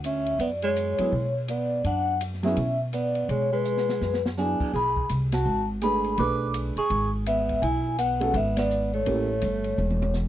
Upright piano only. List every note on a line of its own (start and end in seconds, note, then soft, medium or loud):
0.99 1.11 F#3 medium
0.99 1.11 B3 soft
0.99 1.11 E4 medium
0.99 1.12 G#4 medium
2.43 2.55 F#3 medium
2.43 2.56 B3 medium
2.43 2.56 E4 medium
2.43 2.56 G#4 medium
4.37 4.74 F#3 soft
4.37 4.74 B3 soft
4.37 4.74 E4 soft
4.37 4.74 G#4 soft
5.82 6.17 A3 soft
5.82 6.17 D4 soft
5.82 6.18 G#4 soft
5.82 6.18 B4 medium
6.18 6.72 A3 medium
6.18 6.73 D4 medium
6.18 6.73 G#4 medium
6.18 6.73 B4 medium
8.20 8.33 G#3 medium
8.20 8.33 C#4 medium
8.20 8.33 F#4 soft
8.20 8.34 A4 medium
9.06 9.26 A#3 medium
9.06 9.27 C#4 soft
9.06 9.27 E4 soft
9.06 9.27 G4 medium